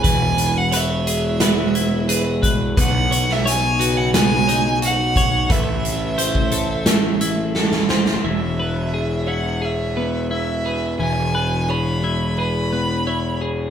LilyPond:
<<
  \new Staff \with { instrumentName = "Violin" } { \time 4/4 \key e \major \tempo 4 = 88 gis''8. fis''16 e''2~ e''8 r8 | fis''8. e''16 gis''8. fis''16 gis''4 fis''4 | e''2. r4 | e''4. fis''8 e''4 e''4 |
gis''4 b''4 b''4. r8 | }
  \new Staff \with { instrumentName = "Clean electric guitar" } { \time 4/4 \key e \major b'4 cis''4 b'4 b'4 | r8 cis''4 b'4 cis''4 r8 | b'4 c''4 r2 | e''4 r8 cis''4 b'4 b'8~ |
b'8 r8 cis''4 b'4 cis''4 | }
  \new Staff \with { instrumentName = "Clean electric guitar" } { \time 4/4 \key e \major <e b e' gis' b'>4 b'8 gis'8 b8 e'8 gis'8 b'8 | b4 cis''8 fis'8 b8 dis'8 fis'8 cis''8 | a4 c''8 a'8 a8 e'8 a'8 c''8 | e8 b'8 gis'8 e'8 gis'8 b8 e'8 gis'8 |
e8 b'8 gis'8 e'8 gis'8 b8 e'8 gis'8 | }
  \new Staff \with { instrumentName = "Analog synth pad" } { \clef bass \time 4/4 \key e \major <b, e gis e'>1 | <cis fis b dis'>1 | <c e a e'>1 | r1 |
r1 | }
  \new Staff \with { instrumentName = "Picked electric bass" } { \clef bass \time 4/4 \key e \major e,,1 | b,,1 | a,,1 | e,,1 |
e,,1 | }
  \new DrumStaff \with { instrumentName = "Drums" } \drummode { \time 4/4 <hh bd>8 hh8 hh8 hh8 <hh sn>8 hh8 hh8 <hh bd>8 | <hh bd>8 hh16 sn16 hh8 hh8 <hh sn>8 hh8 hh8 <hh bd>8 | <hh bd>8 hh8 hh16 bd16 hh8 <hh sn>8 hh8 sn16 sn16 sn16 sn16 | r4 r4 r4 r4 |
r4 r4 r4 r4 | }
>>